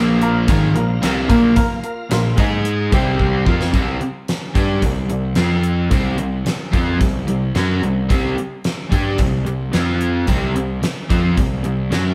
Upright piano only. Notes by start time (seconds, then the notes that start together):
Already playing: A#4 F5 A#5
0.22 A#4 F5 A#5
0.49 A#4 F5 A#5
0.74 A#4 F5 A#5
1.03 A#4 F5 A#5
1.28 A#4 F5 A#5
1.56 A#4 F5 A#5
1.84 A#4 F5 A#5
2.11 A#4 F5 C6
2.39 G#4 D#5 G#5
2.93 G4 C5 G5
3.48 F4 A#4 F5